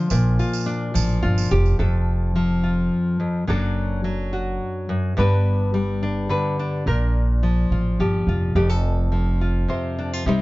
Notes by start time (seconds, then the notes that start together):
Already playing: F3 F4
0.10 A#1 A#2, tambourine
0.39 F4, tambourine
0.53 tambourine
0.66 D4
0.94 A1 F3, tambourine
1.23 G1 F4
1.38 tambourine
1.51 F1 G4
1.66 tambourine
1.79 F1 F2 A4
2.36 F3
2.64 F4
3.20 F2
3.47 F#1 F#2 F#3 D4 F#4 A4
4.04 F#3
4.33 F#4
4.89 F#2
5.17 G1 G2 G3 B3 D4 B4
5.74 G3
6.03 D4
6.29 D3 B4
6.59 D4
6.86 A#1 A#2 A#4
7.43 F3
7.70 A1 F4
7.99 G1 F3 G4
8.27 F1 F4
8.55 F1 F2 G4
8.69 A4
9.12 F3
9.41 F4
9.68 C3 C5
9.98 D4
10.13 F4
10.26 C2 C3 G3 D#4 G4 C5